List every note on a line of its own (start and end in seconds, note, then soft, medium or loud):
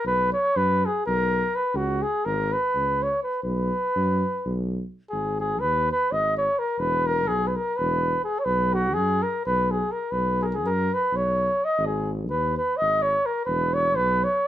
0.04 0.32 B1 medium
0.04 0.32 B4 medium
0.33 0.58 C#5 loud
0.56 0.84 F#2 loud
0.56 0.87 B4 loud
0.86 1.06 G#4 medium
1.06 1.44 B1 loud
1.06 1.57 A#4 loud
1.56 1.78 B4 medium
1.74 2.02 C#2 loud
1.74 2.04 F#4 medium
2.02 2.27 G#4 medium
2.25 2.54 G#1 loud
2.25 2.54 A#4 medium
2.53 3.04 B4 medium
2.75 3.12 C#2 medium
3.03 3.23 C#5 medium
3.23 3.42 B4 medium
3.43 3.71 B1 loud
3.43 4.66 B4 medium
3.95 4.23 F#2 loud
4.46 4.82 B1 loud
5.10 5.64 G#1 medium
5.10 5.37 G#4 medium
5.40 5.62 G#4 medium
5.60 5.90 D#2 loud
5.60 5.89 B4 loud
5.92 6.13 B4 loud
6.11 6.48 G#1 medium
6.11 6.37 D#5 medium
6.37 6.61 C#5 medium
6.59 6.81 A#4 medium
6.78 7.30 E1 loud
6.78 7.08 B4 loud
7.07 7.29 A#4 loud
7.28 7.56 B1 medium
7.28 7.49 G#4 loud
7.47 7.57 B4 medium
7.56 7.78 A#4 medium
7.76 8.16 E1 loud
7.76 8.24 B4 medium
8.24 8.41 G#4 medium
8.39 8.46 C#5 medium
8.45 8.97 B1 loud
8.45 8.75 B4 loud
8.74 8.95 F#4 medium
8.94 9.23 F#2 medium
8.94 9.24 G#4 loud
9.22 9.45 A#4 medium
9.46 9.83 B1 loud
9.46 9.72 B4 medium
9.71 9.93 G#4 medium
9.92 10.13 A#4 medium
10.12 10.64 B1 loud
10.12 10.43 B4 loud
10.42 10.45 G#4 medium
10.42 10.55 A#4 medium
10.53 10.68 G#4 medium
10.63 10.90 F#2 medium
10.63 10.95 A#4 medium
10.94 11.18 B4 medium
11.12 11.49 B1 medium
11.16 11.66 C#5 medium
11.65 11.88 D#5 medium
11.78 12.32 G#1 loud
11.86 12.11 G#4 medium
12.30 12.58 D#2 loud
12.30 12.56 B4 medium
12.57 12.78 B4 medium
12.77 13.17 G#1 medium
12.77 13.04 D#5 medium
13.02 13.28 C#5 medium
13.26 13.45 A#4 medium
13.46 13.99 E1 loud
13.46 13.75 B4 medium
13.74 13.97 C#5 loud
13.96 14.24 B1 loud
13.96 14.25 B4 loud
14.24 14.48 C#5 medium